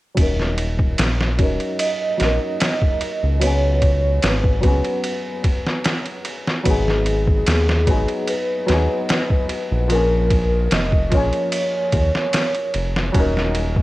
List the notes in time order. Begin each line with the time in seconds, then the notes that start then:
0.14 D#1 F#3 C#4, kick, ride
0.19 D#4 A#4
0.40 snare
0.58 ride
0.79 kick
0.98 A#1, snare, ride
1.21 snare
1.38 D#1 F#3 C#4 D#4 A#4, kick, ride
1.60 ride
1.79 D#5, ride
2.17 A#1 F#3 C#4, snare, ride
2.22 D#4 A#4
2.60 snare, ride
2.82 kick
3.01 ride
3.23 C#2
3.39 F#3 B3 C#5, ride
3.44 C#4 G#4
3.82 kick, ride
4.22 G#1 B4, snare, ride
4.44 kick
4.61 C#2 F#3 B3, kick, ride
4.65 C#4 G#4
4.84 ride
5.04 ride
5.44 kick, ride
5.67 snare
5.84 snare, ride
6.06 ride
6.25 ride
6.47 snare
6.63 G#1 F#3 B3 G#4, kick, ride
6.68 D#4 G#4
6.88 snare
7.06 ride
7.27 kick
7.47 D#2 G#4, snare, ride
7.69 snare
7.87 G#1 F#3 B3 D#4 G#4, kick, ride
8.08 ride
8.28 B4, ride
8.66 D#2 F#3 B3, snare, ride
8.71 D#4 G#4
9.09 snare, ride
9.30 kick
9.49 ride
9.72 A#1
9.88 F3 A#3 A#4, ride
9.92 C#4 G#4
10.30 kick, ride
10.71 F1 D#5, snare, ride
10.92 kick
11.10 A#1 F3 A#3, kick, ride
11.14 C#4 G#4 C#5
11.33 ride
11.52 ride
11.92 D#2, kick, ride
12.15 snare
12.33 snare, ride
12.55 ride
12.74 F1, ride
12.96 snare
13.12 D#1 F#3 C#4, kick, ride
13.17 D#4 A#4
13.37 snare
13.55 ride
13.76 kick